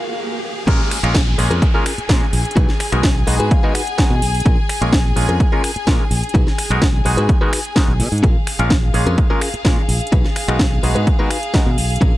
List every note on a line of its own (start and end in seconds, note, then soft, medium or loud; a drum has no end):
0.00 0.66 G#4 medium
0.00 0.68 F5 medium
0.00 riser medium
0.00 swell medium
0.67 0.78 A#1 loud
0.67 0.99 G#3 loud
0.67 0.99 A#3 medium
0.67 0.80 C#4 loud
0.67 0.99 C#4 medium
0.67 0.80 F4 medium
0.67 0.99 F4 medium
0.67 8.22 G#4 medium
0.67 0.80 G#4 loud
0.67 0.99 A#4 loud
0.67 0.80 A#4 loud
0.67 8.24 G#5 medium
0.67 kick loud
0.67 closed hi-hat medium
0.67 downlifter medium
0.91 finger snap medium
0.91 muted clean electric guitar stroke soft
0.91 open hi-hat loud
1.03 1.35 A#1 loud
1.03 1.20 G#3 medium
1.03 1.20 A#3 medium
1.03 1.20 C#4 medium
1.03 1.20 F4 medium
1.03 1.20 A#4 medium
1.03 finger snap medium
1.03 closed hi-hat medium
1.15 kick loud
1.15 snare loud
1.15 closed hi-hat medium
1.38 1.49 A#1 medium
1.38 1.71 G#3 medium
1.38 1.72 A#3 medium
1.38 1.72 C#4 medium
1.38 1.72 F4 medium
1.38 1.72 G#4 medium
1.38 muted clean electric guitar stroke medium
1.38 open hi-hat loud
1.51 1.60 F2 medium
1.51 1.62 C#4 medium
1.51 1.62 F4 medium
1.51 1.62 G#4 medium
1.51 1.62 A#4 loud
1.51 closed hi-hat medium
1.62 kick loud
1.62 closed hi-hat medium
1.74 1.84 G#3 medium
1.74 1.84 A#3 medium
1.74 1.84 C#4 medium
1.74 1.92 C#4 medium
1.74 1.92 F4 medium
1.74 1.85 F4 medium
1.74 1.92 G#4 loud
1.74 1.92 A#4 loud
1.74 1.85 A#4 loud
1.86 finger snap medium
1.86 open hi-hat loud
1.98 muted fingered electric bass stroke soft
1.98 closed hi-hat medium
2.09 2.20 A#2 medium
2.09 2.26 G#3 medium
2.09 2.26 A#3 medium
2.09 2.26 C#4 medium
2.09 2.27 F4 medium
2.09 2.27 A#4 medium
2.09 muted clean electric guitar stroke medium
2.09 kick loud
2.09 snare loud
2.09 closed hi-hat medium
2.21 muted clean electric guitar stroke soft
2.33 2.43 A#1 medium
2.33 open hi-hat loud
2.45 closed hi-hat medium
2.51 closed hi-hat medium
2.56 2.67 B1 loud
2.56 2.69 D#4 loud
2.56 2.69 F#4 loud
2.56 2.69 G#4 medium
2.56 2.69 B4 loud
2.56 kick loud
2.56 closed hi-hat medium
2.69 snare soft
2.80 finger snap medium
2.80 muted clean electric guitar stroke soft
2.80 open hi-hat loud
2.92 3.24 B1 loud
2.92 3.09 G#3 medium
2.92 3.09 B3 medium
2.92 3.09 D#4 medium
2.92 3.09 F#4 medium
2.92 3.09 A#4 medium
2.92 finger snap medium
2.92 closed hi-hat medium
3.03 kick loud
3.03 snare loud
3.03 closed hi-hat medium
3.27 3.38 B1 medium
3.27 3.60 G#3 medium
3.27 3.60 B3 medium
3.27 3.60 D#4 medium
3.27 3.61 F#4 medium
3.27 3.61 G#4 medium
3.27 3.40 D#5 medium
3.27 muted clean electric guitar stroke medium
3.27 open hi-hat loud
3.40 3.49 G#2 medium
3.40 3.51 D#4 medium
3.40 3.51 F#4 medium
3.40 3.51 G#4 medium
3.40 3.51 B4 loud
3.40 closed hi-hat medium
3.51 3.73 F5 medium
3.51 kick loud
3.51 closed hi-hat medium
3.63 3.73 G#3 medium
3.63 3.73 B3 medium
3.63 3.81 D#4 loud
3.63 3.73 D#4 medium
3.63 3.81 F#4 loud
3.63 3.74 F#4 medium
3.63 3.81 G#4 loud
3.63 3.74 A#4 loud
3.63 3.81 B4 loud
3.75 3.97 F#5 medium
3.75 finger snap medium
3.75 open hi-hat loud
3.87 closed hi-hat medium
3.98 4.15 G#3 medium
3.98 4.15 B3 medium
3.98 4.15 D#4 medium
3.98 4.15 F#4 medium
3.98 4.15 A#4 medium
3.98 4.42 G#5 medium
3.98 muted clean electric guitar stroke medium
3.98 kick loud
3.98 snare loud
3.98 closed hi-hat medium
4.10 4.20 B2 medium
4.10 muted clean electric guitar stroke soft
4.22 4.42 B1 medium
4.22 open hi-hat loud
4.35 open hi-hat medium
4.40 closed hi-hat medium
4.45 4.56 A#1 loud
4.45 4.58 C#4 loud
4.45 4.58 F4 loud
4.45 4.58 G#4 medium
4.45 4.58 A#4 loud
4.45 kick loud
4.45 closed hi-hat medium
4.69 finger snap medium
4.69 muted clean electric guitar stroke soft
4.69 open hi-hat loud
4.81 5.13 A#1 loud
4.81 4.98 G#3 medium
4.81 4.98 A#3 medium
4.81 4.98 C#4 medium
4.81 4.98 F4 medium
4.81 4.98 A#4 medium
4.81 finger snap medium
4.81 closed hi-hat medium
4.93 kick loud
4.93 snare loud
4.93 closed hi-hat medium
5.16 5.27 A#1 medium
5.16 5.49 G#3 medium
5.16 5.49 A#3 medium
5.16 5.49 C#4 medium
5.16 5.50 F4 medium
5.16 5.50 G#4 medium
5.16 muted clean electric guitar stroke medium
5.16 open hi-hat loud
5.29 5.38 F2 medium
5.29 5.40 C#4 medium
5.29 5.40 F4 medium
5.29 5.40 G#4 medium
5.29 5.40 A#4 medium
5.29 closed hi-hat medium
5.40 kick loud
5.40 closed hi-hat medium
5.52 5.62 G#3 medium
5.52 5.62 A#3 medium
5.52 5.62 C#4 medium
5.52 5.70 C#4 medium
5.52 5.62 F4 medium
5.52 5.70 F4 medium
5.52 5.70 G#4 medium
5.52 5.70 A#4 loud
5.52 5.63 A#4 loud
5.64 finger snap medium
5.64 open hi-hat loud
5.76 muted fingered electric bass stroke soft
5.76 closed hi-hat medium
5.87 5.98 A#2 medium
5.87 6.04 G#3 medium
5.87 6.04 A#3 medium
5.87 6.04 C#4 medium
5.87 6.04 F4 medium
5.87 6.05 A#4 medium
5.87 muted clean electric guitar stroke medium
5.87 kick loud
5.87 snare loud
5.87 closed hi-hat medium
6.00 muted clean electric guitar stroke soft
6.11 6.21 A#1 medium
6.11 open hi-hat loud
6.24 closed hi-hat soft
6.29 closed hi-hat medium
6.34 6.45 B1 loud
6.34 6.47 D#4 loud
6.34 6.47 F#4 loud
6.34 6.47 G#4 loud
6.34 6.47 B4 loud
6.34 kick loud
6.34 closed hi-hat medium
6.47 snare soft
6.58 finger snap medium
6.58 muted clean electric guitar stroke soft
6.58 open hi-hat loud
6.70 7.02 B1 loud
6.70 6.87 G#3 medium
6.70 6.87 B3 medium
6.70 6.87 D#4 medium
6.70 6.87 F#4 medium
6.70 6.87 A#4 medium
6.70 finger snap medium
6.82 kick loud
6.82 snare loud
6.82 closed hi-hat medium
7.05 7.16 B1 medium
7.05 7.38 G#3 medium
7.05 7.38 B3 medium
7.05 7.39 D#4 medium
7.05 7.39 F#4 medium
7.05 7.39 G#4 medium
7.05 muted clean electric guitar stroke medium
7.05 open hi-hat loud
7.17 7.27 G#2 medium
7.17 7.29 D#4 medium
7.17 7.29 F#4 medium
7.17 7.29 G#4 medium
7.17 7.29 B4 loud
7.17 closed hi-hat medium
7.29 kick loud
7.29 closed hi-hat medium
7.41 7.51 G#3 medium
7.41 7.51 B3 medium
7.41 7.51 D#4 medium
7.41 7.59 D#4 medium
7.41 7.59 F#4 medium
7.41 7.51 F#4 medium
7.41 7.59 G#4 loud
7.41 7.52 A#4 loud
7.41 7.59 B4 loud
7.53 finger snap medium
7.53 open hi-hat loud
7.65 closed hi-hat medium
7.76 7.93 G#3 medium
7.76 7.93 B3 medium
7.76 7.93 D#4 medium
7.76 7.93 F#4 medium
7.76 7.93 A#4 medium
7.76 muted clean electric guitar stroke medium
7.76 kick loud
7.76 snare loud
7.76 closed hi-hat medium
7.88 8.01 B1 medium
7.88 muted clean electric guitar stroke soft
8.00 8.10 B2 medium
8.00 open hi-hat loud
8.12 8.21 G#2 loud
8.12 open hi-hat medium
8.18 closed hi-hat medium
8.23 8.34 A#1 loud
8.23 8.36 C#4 loud
8.23 8.36 F4 loud
8.23 12.18 G#4 medium
8.23 8.36 G#4 loud
8.23 8.36 A#4 loud
8.23 12.18 F5 medium
8.23 kick loud
8.23 closed hi-hat medium
8.47 finger snap medium
8.47 muted clean electric guitar stroke soft
8.47 open hi-hat loud
8.59 8.91 A#1 loud
8.59 8.76 G#3 medium
8.59 8.76 A#3 medium
8.59 8.76 C#4 medium
8.59 8.76 F4 medium
8.59 8.76 A#4 medium
8.59 finger snap medium
8.59 closed hi-hat soft
8.70 kick loud
8.70 snare loud
8.70 closed hi-hat medium
8.94 9.05 A#1 medium
8.94 9.27 G#3 medium
8.94 9.27 A#3 medium
8.94 9.27 C#4 medium
8.94 9.27 F4 medium
8.94 9.28 G#4 medium
8.94 muted clean electric guitar stroke medium
8.94 open hi-hat loud
9.06 9.16 F2 medium
9.06 9.18 C#4 medium
9.06 9.18 F4 medium
9.06 9.18 G#4 medium
9.06 9.18 A#4 medium
9.06 closed hi-hat medium
9.18 kick loud
9.18 closed hi-hat medium
9.30 9.40 G#3 medium
9.30 9.40 A#3 medium
9.30 9.40 C#4 medium
9.30 9.48 C#4 medium
9.30 9.40 F4 medium
9.30 9.48 F4 medium
9.30 9.48 G#4 loud
9.30 9.48 A#4 loud
9.30 9.40 A#4 loud
9.41 finger snap medium
9.41 open hi-hat loud
9.54 muted fingered electric bass stroke soft
9.54 closed hi-hat medium
9.65 9.75 A#2 medium
9.65 9.82 G#3 medium
9.65 9.82 A#3 medium
9.65 9.82 C#4 medium
9.65 9.82 F4 medium
9.65 9.82 A#4 medium
9.65 muted clean electric guitar stroke medium
9.65 kick loud
9.65 snare loud
9.65 closed hi-hat medium
9.78 muted clean electric guitar stroke soft
9.88 9.99 A#1 medium
9.88 open hi-hat loud
10.01 closed hi-hat soft
10.07 closed hi-hat medium
10.12 10.23 B1 loud
10.12 10.25 D#4 loud
10.12 10.25 F#4 loud
10.12 10.25 G#4 medium
10.12 10.25 B4 loud
10.12 kick loud
10.12 closed hi-hat medium
10.24 snare soft
10.36 finger snap medium
10.36 muted clean electric guitar stroke soft
10.36 open hi-hat loud
10.48 10.80 B1 loud
10.48 10.65 G#3 medium
10.48 10.65 B3 medium
10.48 10.65 D#4 medium
10.48 10.65 F#4 medium
10.48 10.65 A#4 medium
10.48 finger snap medium
10.48 closed hi-hat soft
10.59 kick loud
10.59 snare loud
10.59 closed hi-hat medium
10.83 10.94 B1 medium
10.83 11.16 G#3 medium
10.83 11.16 B3 medium
10.83 11.17 D#4 medium
10.83 11.17 F#4 medium
10.83 11.17 G#4 medium
10.83 muted clean electric guitar stroke medium
10.83 open hi-hat loud
10.95 11.05 G#2 medium
10.95 11.07 D#4 medium
10.95 11.07 F#4 medium
10.95 11.07 G#4 medium
10.95 11.07 B4 loud
10.95 closed hi-hat medium
11.07 kick loud
11.07 closed hi-hat medium
11.19 11.29 G#3 medium
11.19 11.29 B3 medium
11.19 11.29 D#4 medium
11.19 11.37 D#4 loud
11.19 11.29 F#4 medium
11.19 11.37 F#4 medium
11.19 11.37 G#4 medium
11.19 11.29 A#4 loud
11.19 11.37 B4 loud
11.30 finger snap medium
11.30 open hi-hat loud
11.43 closed hi-hat medium
11.54 11.71 G#3 medium
11.54 11.71 B3 medium
11.54 11.71 D#4 medium
11.54 11.71 F#4 medium
11.54 11.71 A#4 medium
11.54 muted clean electric guitar stroke medium
11.54 kick loud
11.54 snare loud
11.54 closed hi-hat medium
11.66 11.76 B2 medium
11.66 muted clean electric guitar stroke soft
11.78 11.97 B1 medium
11.78 open hi-hat loud
11.90 open hi-hat medium
11.96 closed hi-hat medium
12.01 12.12 A#1 loud
12.01 12.14 C#4 loud
12.01 12.14 F4 medium
12.01 12.14 G#4 loud
12.01 12.14 A#4 loud
12.01 kick loud
12.01 closed hi-hat medium